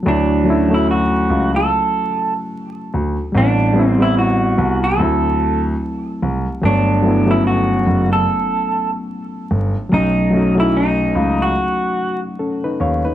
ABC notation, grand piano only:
X:1
M:4/4
L:1/16
Q:"Swing 16ths" 1/4=73
K:D
V:1 name="Grand piano" clef=bass
D,,6 C,,2 z6 D,, z | A,,,6 =C,,2 D,,4 z2 C,, z | G,,,6 F,,,2 z6 G,,, z | B,,,6 C,,2 z6 ^D,, z |]